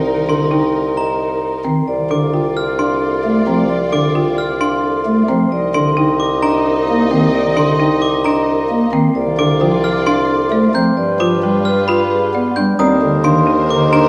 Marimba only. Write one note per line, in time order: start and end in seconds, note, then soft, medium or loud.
0.00 0.13 C4 medium
0.29 0.58 D4 medium
0.51 0.81 D#4 medium
1.65 1.95 C4 medium
2.11 2.40 D4 medium
2.34 2.63 F4 medium
2.79 3.09 D4 medium
3.47 3.77 C4 medium
3.93 4.22 D4 medium
4.15 4.45 F4 medium
4.61 4.90 D4 medium
5.28 5.58 C4 medium
5.74 6.04 D4 medium
5.97 6.27 D#4 medium
6.43 6.72 D4 medium
7.11 7.40 C4 medium
7.57 7.86 D4 medium
7.80 8.09 D#4 medium
8.26 8.54 D4 medium
8.93 9.22 C4 medium
9.39 9.68 D4 medium
9.61 9.90 F4 medium
10.07 10.36 D4 medium
10.52 10.81 C5 medium
10.74 11.04 C4 medium
11.20 11.50 F4 medium
11.43 11.72 G4 medium
11.89 12.18 F4 medium
12.35 12.63 D5 medium
12.57 12.86 D4 medium
12.80 13.09 C4 loud
13.25 13.54 D4 medium
13.47 13.77 D#4 medium
13.93 14.09 D4 loud